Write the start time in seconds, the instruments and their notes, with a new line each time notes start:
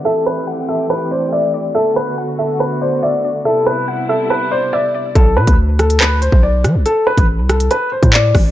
0.05 string section E3 A3 C4 G4, grand piano A4, synth pluck E5
0.26 grand piano B4
0.47 synth pluck F#5
0.69 grand piano A4, synth pluck E5
0.90 grand piano B4
1.11 grand piano C5, synth pluck D5
1.32 grand piano D5, synth pluck E5
1.54 synth pluck D5
1.75 string section D3 B3 F#4, grand piano A4, synth pluck E5
1.96 grand piano B4
2.18 synth pluck F#5
2.39 grand piano A4, synth pluck E5
2.60 grand piano B4
2.81 grand piano C5, synth pluck D5
3.03 grand piano D5, synth pluck E5
3.24 synth pluck D5
3.45 string section C3 G3 E4, grand piano A4, synth pluck E5
3.66 grand piano B4
3.88 synth pluck F#5
4.09 grand piano A4, synth pluck E5
4.30 grand piano B4
4.51 grand piano C5, synth pluck D5
4.73 grand piano D5, synth pluck E5
4.94 synth pluck D5
5.15 808-style bass B1, grand piano A4, kick, closed hi-hat
5.37 808-style bass B2, grand piano B4
5.47 808-style bass D2, kick, closed hi-hat
5.79 grand piano A4, cross-stick, closed hi-hat
5.90 closed hi-hat
6.00 grand piano B4, clap
6.22 grand piano C5, closed hi-hat
6.32 808-style bass B1, kick
6.43 grand piano D5
6.64 808-style bass F#3, cross-stick, closed hi-hat
6.75 808-style bass B1
6.86 grand piano A4, closed hi-hat
7.07 grand piano B4
7.18 808-style bass A1, kick, closed hi-hat
7.39 808-style bass C2
7.49 grand piano A4, cross-stick, closed hi-hat
7.60 closed hi-hat
7.71 grand piano B4, closed hi-hat
7.92 grand piano C5
8.03 808-style bass A2, kick, closed hi-hat
8.13 grand piano D5, clap
8.35 808-style bass A1, kick, cross-stick, open hi-hat